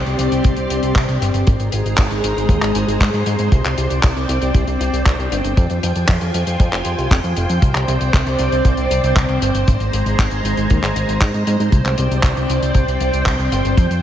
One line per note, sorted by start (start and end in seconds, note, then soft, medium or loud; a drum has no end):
0.00 1.45 C4 medium
0.00 1.45 G4 medium
0.00 1.45 D5 medium
0.00 1.45 C6 medium
0.06 0.16 C2 medium
0.06 closed hi-hat soft
0.19 0.28 C2 medium
0.19 closed hi-hat loud
0.32 0.41 C2 medium
0.32 closed hi-hat medium
0.44 0.54 C2 loud
0.44 kick loud
0.44 closed hi-hat medium
0.56 0.67 C2 medium
0.56 closed hi-hat soft
0.70 0.80 C2 medium
0.70 closed hi-hat medium
0.83 0.92 C2 medium
0.83 closed hi-hat medium
0.95 1.05 C2 loud
0.95 kick loud
0.95 clap loud
0.95 closed hi-hat medium
1.09 1.18 C2 medium
1.09 closed hi-hat soft
1.21 1.31 G1 medium
1.21 closed hi-hat loud
1.34 1.44 G1 medium
1.34 closed hi-hat medium
1.47 1.57 G#1 loud
1.47 3.50 G#3 medium
1.47 3.50 G#4 medium
1.47 5.53 C5 medium
1.47 3.50 A#5 medium
1.47 kick loud
1.47 closed hi-hat medium
1.60 1.69 G#1 medium
1.60 closed hi-hat soft
1.72 1.82 G#1 loud
1.72 closed hi-hat loud
1.86 1.95 G#1 medium
1.86 closed hi-hat medium
1.97 2.08 G#1 loud
1.97 kick loud
1.97 clap loud
1.97 closed hi-hat medium
2.11 2.21 G#1 medium
2.11 closed hi-hat soft
2.24 2.33 G#1 medium
2.24 closed hi-hat loud
2.37 2.46 G#1 medium
2.37 closed hi-hat medium
2.49 2.59 D#2 loud
2.49 kick loud
2.49 closed hi-hat medium
2.62 2.72 G#1 medium
2.62 clap soft
2.62 closed hi-hat soft
2.75 2.85 G#1 medium
2.75 closed hi-hat medium
2.88 2.97 G#1 medium
2.88 closed hi-hat medium
3.00 3.10 G#2 loud
3.00 kick loud
3.00 clap loud
3.00 closed hi-hat medium
3.14 3.23 G#2 medium
3.14 closed hi-hat soft
3.26 3.36 G#2 medium
3.26 closed hi-hat loud
3.39 3.49 G#2 medium
3.39 closed hi-hat medium
3.52 3.62 C2 loud
3.52 5.55 C4 medium
3.52 5.55 D5 medium
3.52 9.64 G5 medium
3.52 kick loud
3.52 closed hi-hat medium
3.64 3.74 C2 medium
3.64 clap soft
3.64 closed hi-hat soft
3.78 3.87 C2 medium
3.78 closed hi-hat medium
3.90 4.00 C2 medium
3.90 closed hi-hat medium
4.03 4.13 C2 loud
4.03 kick loud
4.03 clap loud
4.03 closed hi-hat medium
4.16 4.26 C2 medium
4.16 closed hi-hat soft
4.29 4.39 C2 medium
4.29 closed hi-hat loud
4.42 4.51 C2 medium
4.42 closed hi-hat medium
4.55 4.64 C2 loud
4.55 kick loud
4.55 closed hi-hat medium
4.67 4.77 C2 medium
4.67 closed hi-hat soft
4.80 4.90 C2 medium
4.80 closed hi-hat medium
4.93 5.03 C2 medium
4.93 closed hi-hat medium
5.06 5.15 C2 loud
5.06 kick loud
5.06 clap loud
5.06 closed hi-hat medium
5.19 5.28 C2 medium
5.19 closed hi-hat soft
5.32 5.41 G1 medium
5.32 closed hi-hat loud
5.44 5.54 G1 medium
5.44 closed hi-hat medium
5.57 5.67 F2 loud
5.57 7.60 F4 medium
5.57 14.02 C5 medium
5.57 7.60 G#5 medium
5.57 kick loud
5.57 closed hi-hat medium
5.70 5.80 F2 medium
5.70 closed hi-hat soft
5.83 5.92 F2 medium
5.83 closed hi-hat loud
5.96 6.05 F2 medium
5.96 closed hi-hat medium
6.08 6.18 F2 loud
6.08 kick loud
6.08 clap loud
6.08 closed hi-hat medium
6.21 6.31 F2 medium
6.21 closed hi-hat soft
6.34 6.44 F2 medium
6.34 closed hi-hat loud
6.47 6.57 F2 medium
6.47 closed hi-hat medium
6.60 6.69 F2 loud
6.60 kick loud
6.60 closed hi-hat medium
6.73 6.82 F1 medium
6.73 clap soft
6.73 closed hi-hat soft
6.85 6.95 F2 medium
6.85 closed hi-hat loud
6.98 7.08 C2 medium
6.98 closed hi-hat medium
7.11 7.21 F1 loud
7.11 kick loud
7.11 clap loud
7.11 closed hi-hat medium
7.24 7.33 F2 medium
7.24 closed hi-hat soft
7.36 7.46 F1 medium
7.36 closed hi-hat medium
7.50 7.59 F2 medium
7.50 closed hi-hat medium
7.62 7.72 C2 loud
7.62 9.65 C4 medium
7.62 9.65 D5 medium
7.62 kick loud
7.62 closed hi-hat medium
7.75 7.85 C2 medium
7.75 clap soft
7.75 closed hi-hat soft
7.88 7.98 C2 loud
7.88 closed hi-hat medium
8.01 8.10 C2 medium
8.01 closed hi-hat medium
8.14 8.23 C2 loud
8.14 kick loud
8.14 clap loud
8.14 closed hi-hat medium
8.27 8.36 C2 medium
8.27 closed hi-hat soft
8.39 8.49 C2 medium
8.39 closed hi-hat loud
8.52 8.62 C2 medium
8.52 closed hi-hat medium
8.65 8.74 C2 loud
8.65 kick loud
8.65 closed hi-hat medium
8.77 8.87 C2 medium
8.77 closed hi-hat medium
8.91 9.00 C2 medium
8.91 closed hi-hat loud
9.04 9.13 C2 medium
9.04 closed hi-hat medium
9.16 9.26 C2 loud
9.16 kick loud
9.16 clap loud
9.16 closed hi-hat medium
9.29 9.39 C2 medium
9.29 closed hi-hat soft
9.42 9.51 G1 loud
9.42 closed hi-hat loud
9.55 9.64 G1 medium
9.55 closed hi-hat medium
9.68 9.77 G#1 loud
9.68 11.71 G#3 medium
9.68 11.71 G#4 medium
9.68 11.71 A#5 medium
9.68 kick loud
9.68 closed hi-hat medium
9.80 9.90 G#1 medium
9.80 closed hi-hat soft
9.93 10.03 G#1 medium
9.93 closed hi-hat loud
10.06 10.16 G#1 medium
10.06 closed hi-hat medium
10.19 10.28 G#1 loud
10.19 kick loud
10.19 clap loud
10.19 closed hi-hat medium
10.31 10.41 G#1 medium
10.31 closed hi-hat soft
10.44 10.54 G#1 medium
10.44 closed hi-hat medium
10.57 10.67 G#1 medium
10.57 closed hi-hat medium
10.70 10.80 D#2 loud
10.70 kick loud
10.70 closed hi-hat medium
10.83 10.92 G#1 medium
10.83 clap soft
10.83 closed hi-hat soft
10.96 11.05 G#1 medium
10.96 closed hi-hat loud
11.09 11.18 G#1 medium
11.09 closed hi-hat medium
11.21 11.31 G#2 loud
11.21 kick loud
11.21 clap loud
11.21 closed hi-hat medium
11.34 11.44 G#2 medium
11.34 closed hi-hat soft
11.47 11.57 G#2 medium
11.47 closed hi-hat medium
11.60 11.69 G#2 medium
11.60 closed hi-hat medium
11.72 11.82 C2 loud
11.72 13.76 C4 medium
11.72 13.76 D5 medium
11.72 14.02 G5 medium
11.72 kick loud
11.72 closed hi-hat medium
11.85 11.95 C2 medium
11.85 clap soft
11.85 closed hi-hat soft
11.98 12.08 C2 loud
11.98 closed hi-hat medium
12.11 12.21 C2 medium
12.11 closed hi-hat medium
12.23 12.33 C2 loud
12.23 kick loud
12.23 clap loud
12.23 closed hi-hat medium
12.37 12.46 C2 medium
12.37 closed hi-hat soft
12.50 12.59 C2 medium
12.50 closed hi-hat medium
12.62 12.72 C2 medium
12.62 closed hi-hat medium
12.74 12.84 C2 loud
12.74 kick loud
12.74 closed hi-hat medium
12.88 12.97 C2 medium
12.88 closed hi-hat soft
13.01 13.10 C2 medium
13.01 closed hi-hat medium
13.13 13.23 C2 medium
13.13 closed hi-hat medium
13.26 13.36 C2 loud
13.26 kick loud
13.26 clap loud
13.26 closed hi-hat medium
13.39 13.49 C2 medium
13.39 closed hi-hat soft
13.52 13.62 G1 loud
13.52 closed hi-hat loud
13.65 13.74 G1 medium
13.65 closed hi-hat medium
13.77 13.87 F2 loud
13.77 14.02 F4 medium
13.77 14.02 G#5 medium
13.77 kick loud
13.77 closed hi-hat medium
13.91 14.00 F2 medium
13.91 closed hi-hat soft